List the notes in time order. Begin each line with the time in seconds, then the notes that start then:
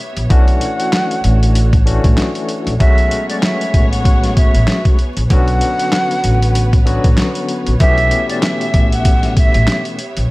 Already playing: B3 G4 C#5 E5
0.17 A#1, closed hi-hat
0.29 B1 D3 E3 A3 C#4 D4 F#4 F#5, kick, closed hi-hat
0.48 closed hi-hat
0.61 closed hi-hat
0.80 closed hi-hat
0.92 snare, clap, closed hi-hat
1.11 closed hi-hat
1.24 A1, closed hi-hat
1.43 closed hi-hat
1.55 closed hi-hat
1.73 kick, closed hi-hat
1.85 E3 A3 C#4 D4 F#4, closed hi-hat
2.04 A1, kick, closed hi-hat
2.18 snare, clap, closed hi-hat
2.35 closed hi-hat
2.49 closed hi-hat
2.67 A#1, closed hi-hat
2.79 B1 F#3 G#3 A3 B3 C#4 F#4 G#4 C#5 E5, kick, closed hi-hat
2.98 closed hi-hat
3.11 closed hi-hat
3.29 D5, closed hi-hat
3.42 E5, snare, clap, closed hi-hat
3.61 closed hi-hat
3.74 A1, kick, closed hi-hat
3.91 F#5, closed hi-hat
4.05 kick, closed hi-hat
4.23 snare, closed hi-hat
4.37 E5, kick, closed hi-hat
4.54 A1, closed hi-hat
4.68 snare, clap, closed hi-hat
4.85 kick, closed hi-hat
4.99 closed hi-hat
5.17 A#1, closed hi-hat
5.30 B1 D3 F#3 B3 C#4 F#4 B4 C#5 F#5, kick, closed hi-hat
5.48 closed hi-hat
5.61 closed hi-hat
5.79 closed hi-hat
5.92 snare, clap, closed hi-hat
6.11 closed hi-hat
6.24 A1, closed hi-hat
6.42 closed hi-hat
6.55 closed hi-hat
6.73 kick, closed hi-hat
6.85 D3 F#3 B3 C#4 F#4, closed hi-hat
7.04 A1, kick, closed hi-hat
7.18 snare, clap, closed hi-hat
7.35 closed hi-hat
7.49 closed hi-hat
7.67 A#1, closed hi-hat
7.80 B1 B2 E3 A3 B3 C#4 G4 E5, kick, closed hi-hat
7.98 closed hi-hat
8.11 closed hi-hat
8.29 D5, closed hi-hat
8.42 E5, snare, clap, closed hi-hat
8.61 closed hi-hat
8.74 A1, kick, closed hi-hat
8.92 F#5, closed hi-hat
9.05 kick, closed hi-hat
9.23 snare, closed hi-hat
9.37 E5, kick, closed hi-hat
9.54 A1, closed hi-hat
9.68 snare, clap, closed hi-hat
9.85 closed hi-hat
9.99 closed hi-hat
10.17 A#1, closed hi-hat